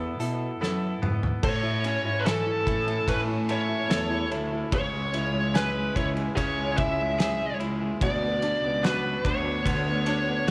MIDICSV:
0, 0, Header, 1, 6, 480
1, 0, Start_track
1, 0, Tempo, 821918
1, 838, Time_signature, 4, 2, 24, 8
1, 6136, End_track
2, 0, Start_track
2, 0, Title_t, "Lead electric guitar"
2, 0, Program_c, 0, 29
2, 843, Note_on_c, 0, 73, 106
2, 1283, Note_on_c, 0, 71, 64
2, 1293, Note_off_c, 0, 73, 0
2, 1316, Note_off_c, 0, 71, 0
2, 1318, Note_on_c, 0, 69, 83
2, 1799, Note_off_c, 0, 69, 0
2, 1801, Note_on_c, 0, 71, 89
2, 1865, Note_off_c, 0, 71, 0
2, 2050, Note_on_c, 0, 73, 92
2, 2500, Note_off_c, 0, 73, 0
2, 2771, Note_on_c, 0, 73, 84
2, 3242, Note_on_c, 0, 71, 85
2, 3259, Note_off_c, 0, 73, 0
2, 3464, Note_off_c, 0, 71, 0
2, 3479, Note_on_c, 0, 73, 88
2, 3544, Note_off_c, 0, 73, 0
2, 3718, Note_on_c, 0, 73, 102
2, 3955, Note_off_c, 0, 73, 0
2, 3957, Note_on_c, 0, 76, 103
2, 4414, Note_off_c, 0, 76, 0
2, 4688, Note_on_c, 0, 74, 119
2, 5166, Note_on_c, 0, 71, 103
2, 5177, Note_off_c, 0, 74, 0
2, 5409, Note_off_c, 0, 71, 0
2, 5412, Note_on_c, 0, 73, 80
2, 6136, Note_off_c, 0, 73, 0
2, 6136, End_track
3, 0, Start_track
3, 0, Title_t, "Clean electric guitar"
3, 0, Program_c, 1, 27
3, 0, Note_on_c, 1, 52, 72
3, 0, Note_on_c, 1, 59, 58
3, 0, Note_on_c, 1, 64, 54
3, 0, Note_on_c, 1, 69, 61
3, 114, Note_off_c, 1, 69, 0
3, 116, Note_on_c, 1, 69, 53
3, 350, Note_off_c, 1, 59, 0
3, 357, Note_on_c, 1, 59, 60
3, 359, Note_off_c, 1, 64, 0
3, 361, Note_on_c, 1, 64, 58
3, 362, Note_off_c, 1, 69, 0
3, 365, Note_on_c, 1, 69, 67
3, 590, Note_off_c, 1, 59, 0
3, 597, Note_on_c, 1, 59, 59
3, 885, Note_off_c, 1, 59, 0
3, 959, Note_off_c, 1, 52, 0
3, 1181, Note_off_c, 1, 64, 0
3, 1181, Note_off_c, 1, 69, 0
3, 1318, Note_on_c, 1, 61, 61
3, 1322, Note_on_c, 1, 64, 63
3, 1326, Note_on_c, 1, 69, 68
3, 1554, Note_off_c, 1, 64, 0
3, 1557, Note_on_c, 1, 64, 55
3, 1796, Note_off_c, 1, 61, 0
3, 1798, Note_on_c, 1, 61, 65
3, 2036, Note_off_c, 1, 64, 0
3, 2038, Note_on_c, 1, 64, 54
3, 2273, Note_off_c, 1, 69, 0
3, 2280, Note_on_c, 1, 69, 74
3, 2519, Note_off_c, 1, 64, 0
3, 2521, Note_on_c, 1, 64, 58
3, 2760, Note_on_c, 1, 49, 77
3, 2807, Note_off_c, 1, 69, 0
3, 3234, Note_off_c, 1, 61, 0
3, 3236, Note_on_c, 1, 61, 70
3, 3237, Note_off_c, 1, 64, 0
3, 3239, Note_on_c, 1, 64, 60
3, 3243, Note_on_c, 1, 68, 69
3, 3471, Note_off_c, 1, 64, 0
3, 3478, Note_on_c, 1, 64, 67
3, 3711, Note_off_c, 1, 61, 0
3, 3718, Note_on_c, 1, 61, 67
3, 3952, Note_off_c, 1, 64, 0
3, 3959, Note_on_c, 1, 64, 52
3, 4189, Note_off_c, 1, 68, 0
3, 4196, Note_on_c, 1, 68, 78
3, 4430, Note_off_c, 1, 64, 0
3, 4437, Note_on_c, 1, 64, 65
3, 4679, Note_off_c, 1, 49, 0
3, 4725, Note_off_c, 1, 64, 0
3, 4725, Note_off_c, 1, 68, 0
3, 4726, Note_off_c, 1, 61, 0
3, 5158, Note_on_c, 1, 59, 65
3, 5160, Note_on_c, 1, 62, 66
3, 5165, Note_on_c, 1, 66, 61
3, 5392, Note_off_c, 1, 62, 0
3, 5398, Note_on_c, 1, 62, 57
3, 5629, Note_off_c, 1, 59, 0
3, 5636, Note_on_c, 1, 59, 70
3, 5870, Note_off_c, 1, 62, 0
3, 5877, Note_on_c, 1, 62, 54
3, 6116, Note_off_c, 1, 66, 0
3, 6118, Note_on_c, 1, 66, 76
3, 6136, Note_off_c, 1, 59, 0
3, 6136, Note_off_c, 1, 62, 0
3, 6136, Note_off_c, 1, 66, 0
3, 6136, End_track
4, 0, Start_track
4, 0, Title_t, "Grand piano"
4, 0, Program_c, 2, 0
4, 0, Control_c, 2, 64, 127
4, 0, Note_on_c, 2, 52, 61
4, 0, Note_on_c, 2, 59, 45
4, 0, Note_on_c, 2, 64, 56
4, 0, Note_on_c, 2, 69, 49
4, 106, Note_off_c, 2, 64, 0
4, 115, Note_on_c, 2, 64, 52
4, 348, Note_off_c, 2, 69, 0
4, 356, Note_on_c, 2, 69, 51
4, 812, Note_off_c, 2, 59, 0
4, 814, Note_off_c, 2, 52, 0
4, 815, Note_off_c, 2, 64, 0
4, 823, Note_off_c, 2, 69, 0
4, 834, Note_on_c, 2, 69, 66
4, 846, Control_c, 2, 64, 0
4, 950, Control_c, 2, 64, 127
4, 952, Note_on_c, 2, 64, 51
4, 1080, Note_on_c, 2, 61, 59
4, 1188, Note_off_c, 2, 64, 0
4, 1197, Note_on_c, 2, 64, 52
4, 1317, Note_on_c, 2, 52, 63
4, 1431, Note_off_c, 2, 64, 0
4, 1439, Note_on_c, 2, 64, 48
4, 1557, Note_on_c, 2, 57, 54
4, 1669, Note_off_c, 2, 64, 0
4, 1678, Note_on_c, 2, 64, 51
4, 1787, Note_off_c, 2, 57, 0
4, 1795, Note_on_c, 2, 57, 61
4, 1904, Note_off_c, 2, 64, 0
4, 1913, Note_on_c, 2, 64, 52
4, 2016, Note_off_c, 2, 61, 0
4, 2026, Note_off_c, 2, 57, 0
4, 2035, Note_on_c, 2, 57, 58
4, 2146, Note_off_c, 2, 64, 0
4, 2155, Note_on_c, 2, 64, 52
4, 2254, Note_off_c, 2, 52, 0
4, 2264, Note_off_c, 2, 57, 0
4, 2273, Note_on_c, 2, 57, 58
4, 2388, Note_off_c, 2, 64, 0
4, 2397, Note_on_c, 2, 64, 56
4, 2508, Note_off_c, 2, 57, 0
4, 2516, Note_on_c, 2, 57, 56
4, 2630, Note_off_c, 2, 64, 0
4, 2639, Note_on_c, 2, 64, 53
4, 2733, Note_off_c, 2, 69, 0
4, 2750, Note_off_c, 2, 57, 0
4, 2755, Note_off_c, 2, 64, 0
4, 2760, Note_on_c, 2, 49, 67
4, 2766, Control_c, 2, 64, 0
4, 2880, Control_c, 2, 64, 127
4, 2881, Note_on_c, 2, 56, 55
4, 3001, Note_on_c, 2, 64, 54
4, 3114, Note_off_c, 2, 56, 0
4, 3123, Note_on_c, 2, 56, 51
4, 3240, Note_on_c, 2, 68, 68
4, 3352, Note_off_c, 2, 56, 0
4, 3361, Note_on_c, 2, 56, 50
4, 3475, Note_off_c, 2, 64, 0
4, 3483, Note_on_c, 2, 64, 60
4, 3595, Note_off_c, 2, 56, 0
4, 3603, Note_on_c, 2, 56, 53
4, 3714, Note_off_c, 2, 49, 0
4, 3722, Note_on_c, 2, 49, 69
4, 3833, Note_off_c, 2, 56, 0
4, 3842, Note_on_c, 2, 56, 56
4, 3952, Note_off_c, 2, 64, 0
4, 3961, Note_on_c, 2, 64, 54
4, 4072, Note_off_c, 2, 56, 0
4, 4080, Note_on_c, 2, 56, 52
4, 4176, Note_off_c, 2, 68, 0
4, 4201, Note_on_c, 2, 68, 60
4, 4314, Note_off_c, 2, 56, 0
4, 4323, Note_on_c, 2, 56, 56
4, 4435, Note_off_c, 2, 64, 0
4, 4444, Note_on_c, 2, 64, 55
4, 4553, Note_off_c, 2, 56, 0
4, 4562, Note_on_c, 2, 56, 58
4, 4657, Note_off_c, 2, 49, 0
4, 4665, Note_off_c, 2, 68, 0
4, 4674, Note_off_c, 2, 64, 0
4, 4676, Note_off_c, 2, 56, 0
4, 4683, Note_on_c, 2, 47, 73
4, 4685, Control_c, 2, 64, 0
4, 4801, Control_c, 2, 64, 127
4, 4803, Note_on_c, 2, 59, 56
4, 4922, Note_on_c, 2, 62, 62
4, 5038, Note_off_c, 2, 59, 0
4, 5047, Note_on_c, 2, 59, 56
4, 5163, Note_on_c, 2, 66, 63
4, 5272, Note_off_c, 2, 59, 0
4, 5281, Note_on_c, 2, 59, 50
4, 5396, Note_off_c, 2, 62, 0
4, 5405, Note_on_c, 2, 62, 58
4, 5515, Note_off_c, 2, 59, 0
4, 5524, Note_on_c, 2, 59, 55
4, 5643, Note_on_c, 2, 50, 65
4, 5759, Note_off_c, 2, 59, 0
4, 5767, Note_on_c, 2, 59, 52
4, 5876, Note_off_c, 2, 62, 0
4, 5885, Note_on_c, 2, 62, 61
4, 5994, Note_off_c, 2, 59, 0
4, 6003, Note_on_c, 2, 59, 51
4, 6097, Note_off_c, 2, 66, 0
4, 6136, Note_off_c, 2, 47, 0
4, 6136, Note_off_c, 2, 50, 0
4, 6136, Note_off_c, 2, 59, 0
4, 6136, Note_off_c, 2, 62, 0
4, 6136, End_track
5, 0, Start_track
5, 0, Title_t, "Cello section"
5, 0, Program_c, 3, 48
5, 0, Note_on_c, 3, 40, 92
5, 95, Note_off_c, 3, 40, 0
5, 113, Note_on_c, 3, 47, 77
5, 339, Note_off_c, 3, 47, 0
5, 355, Note_on_c, 3, 42, 81
5, 580, Note_off_c, 3, 42, 0
5, 596, Note_on_c, 3, 44, 81
5, 820, Note_off_c, 3, 44, 0
5, 838, Note_on_c, 3, 45, 98
5, 1174, Note_off_c, 3, 45, 0
5, 1198, Note_on_c, 3, 44, 76
5, 1535, Note_off_c, 3, 44, 0
5, 1558, Note_on_c, 3, 45, 97
5, 1781, Note_off_c, 3, 45, 0
5, 1797, Note_on_c, 3, 45, 112
5, 2254, Note_off_c, 3, 45, 0
5, 2279, Note_on_c, 3, 40, 100
5, 2517, Note_on_c, 3, 38, 89
5, 2518, Note_off_c, 3, 40, 0
5, 2741, Note_off_c, 3, 38, 0
5, 2760, Note_on_c, 3, 37, 102
5, 3456, Note_off_c, 3, 37, 0
5, 3482, Note_on_c, 3, 37, 107
5, 3703, Note_off_c, 3, 37, 0
5, 3720, Note_on_c, 3, 37, 106
5, 4416, Note_off_c, 3, 37, 0
5, 4439, Note_on_c, 3, 37, 86
5, 4662, Note_off_c, 3, 37, 0
5, 4681, Note_on_c, 3, 38, 93
5, 5016, Note_off_c, 3, 38, 0
5, 5043, Note_on_c, 3, 37, 82
5, 5377, Note_off_c, 3, 37, 0
5, 5400, Note_on_c, 3, 38, 110
5, 5622, Note_off_c, 3, 38, 0
5, 5641, Note_on_c, 3, 38, 120
5, 6096, Note_off_c, 3, 38, 0
5, 6136, End_track
6, 0, Start_track
6, 0, Title_t, "Drums"
6, 117, Note_on_c, 9, 42, 73
6, 175, Note_off_c, 9, 42, 0
6, 366, Note_on_c, 9, 38, 51
6, 425, Note_off_c, 9, 38, 0
6, 600, Note_on_c, 9, 45, 77
6, 659, Note_off_c, 9, 45, 0
6, 720, Note_on_c, 9, 43, 78
6, 778, Note_off_c, 9, 43, 0
6, 837, Note_on_c, 9, 36, 124
6, 837, Note_on_c, 9, 49, 98
6, 895, Note_off_c, 9, 36, 0
6, 896, Note_off_c, 9, 49, 0
6, 1075, Note_on_c, 9, 51, 60
6, 1134, Note_off_c, 9, 51, 0
6, 1320, Note_on_c, 9, 51, 73
6, 1324, Note_on_c, 9, 38, 115
6, 1378, Note_off_c, 9, 51, 0
6, 1383, Note_off_c, 9, 38, 0
6, 1558, Note_on_c, 9, 36, 88
6, 1562, Note_on_c, 9, 51, 55
6, 1617, Note_off_c, 9, 36, 0
6, 1620, Note_off_c, 9, 51, 0
6, 1680, Note_on_c, 9, 51, 43
6, 1738, Note_off_c, 9, 51, 0
6, 1797, Note_on_c, 9, 36, 72
6, 1799, Note_on_c, 9, 51, 82
6, 1855, Note_off_c, 9, 36, 0
6, 1858, Note_off_c, 9, 51, 0
6, 2037, Note_on_c, 9, 51, 59
6, 2095, Note_off_c, 9, 51, 0
6, 2281, Note_on_c, 9, 51, 75
6, 2284, Note_on_c, 9, 38, 120
6, 2339, Note_off_c, 9, 51, 0
6, 2342, Note_off_c, 9, 38, 0
6, 2519, Note_on_c, 9, 51, 49
6, 2578, Note_off_c, 9, 51, 0
6, 2758, Note_on_c, 9, 36, 114
6, 2758, Note_on_c, 9, 51, 77
6, 2816, Note_off_c, 9, 51, 0
6, 2817, Note_off_c, 9, 36, 0
6, 2999, Note_on_c, 9, 51, 52
6, 3057, Note_off_c, 9, 51, 0
6, 3241, Note_on_c, 9, 51, 68
6, 3245, Note_on_c, 9, 38, 119
6, 3299, Note_off_c, 9, 51, 0
6, 3304, Note_off_c, 9, 38, 0
6, 3480, Note_on_c, 9, 36, 87
6, 3484, Note_on_c, 9, 51, 60
6, 3539, Note_off_c, 9, 36, 0
6, 3543, Note_off_c, 9, 51, 0
6, 3600, Note_on_c, 9, 51, 37
6, 3658, Note_off_c, 9, 51, 0
6, 3719, Note_on_c, 9, 36, 78
6, 3722, Note_on_c, 9, 51, 88
6, 3778, Note_off_c, 9, 36, 0
6, 3780, Note_off_c, 9, 51, 0
6, 3956, Note_on_c, 9, 51, 61
6, 3961, Note_on_c, 9, 36, 102
6, 4015, Note_off_c, 9, 51, 0
6, 4019, Note_off_c, 9, 36, 0
6, 4203, Note_on_c, 9, 51, 72
6, 4206, Note_on_c, 9, 38, 121
6, 4261, Note_off_c, 9, 51, 0
6, 4265, Note_off_c, 9, 38, 0
6, 4440, Note_on_c, 9, 51, 51
6, 4498, Note_off_c, 9, 51, 0
6, 4680, Note_on_c, 9, 36, 113
6, 4681, Note_on_c, 9, 51, 81
6, 4738, Note_off_c, 9, 36, 0
6, 4740, Note_off_c, 9, 51, 0
6, 4918, Note_on_c, 9, 51, 56
6, 4977, Note_off_c, 9, 51, 0
6, 5163, Note_on_c, 9, 51, 66
6, 5167, Note_on_c, 9, 38, 111
6, 5221, Note_off_c, 9, 51, 0
6, 5226, Note_off_c, 9, 38, 0
6, 5401, Note_on_c, 9, 36, 97
6, 5405, Note_on_c, 9, 51, 62
6, 5459, Note_off_c, 9, 36, 0
6, 5463, Note_off_c, 9, 51, 0
6, 5639, Note_on_c, 9, 36, 87
6, 5643, Note_on_c, 9, 51, 88
6, 5698, Note_off_c, 9, 36, 0
6, 5701, Note_off_c, 9, 51, 0
6, 5876, Note_on_c, 9, 51, 64
6, 5934, Note_off_c, 9, 51, 0
6, 6136, End_track
0, 0, End_of_file